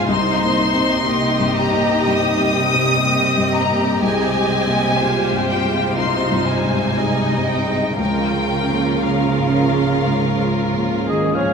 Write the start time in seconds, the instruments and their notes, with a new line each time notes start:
Already playing: felt piano G#2 G#3 A#3
0.08 felt piano C2, cello section C3, viola section G3 D#4, violin section D#4 C5 C6
0.41 felt piano A#3
0.57 viola section G3
0.73 felt piano C4
1.05 felt piano A#3, viola section D#4, violin section G4 D#5
1.40 felt piano G2
1.58 violin section A#5
1.74 felt piano A#3
2.07 felt piano G2, violin section D#6
2.41 felt piano A#3
2.73 felt piano C4
3.05 felt piano A#3, viola section C4, violin section G4 D#5
3.38 felt piano G2
3.54 violin section A#5
3.70 felt piano A#3
4.02 felt piano C2, cello section C3, viola section G#3 C4, violin section D#5 G#5
4.35 felt piano G#3
4.52 viola section G3
4.67 felt piano A#3
4.99 felt piano G#3, viola section F4, violin section C5
5.32 felt piano G2
5.50 violin section G5
5.65 felt piano G#3
5.98 felt piano C2, viola section G3, violin section D#4 C5 C6
6.31 felt piano G2
6.48 violin section G#5
6.65 felt piano G#2
6.98 felt piano G#3, viola section D#4, violin section D#4 D#5
7.32 felt piano G2
7.48 violin section D#4 G5
7.65 felt piano G#3
7.99 felt piano C#2, cello section C#3, viola section F3 C#4, violin section F4 A#4 G5
8.34 felt piano G#3
8.69 felt piano A#3
9.03 felt piano G#3, violin section F5
9.37 felt piano G#2
9.71 felt piano G#3
10.06 felt piano G#2
10.40 felt piano G#3
10.74 felt piano A#3
11.08 cello section D#3, felt piano G#3, violin section G#4, flute G#4, cor anglais D#5
11.34 cello section F3, violin section G#4, flute C#5, cor anglais F5
11.42 felt piano G#2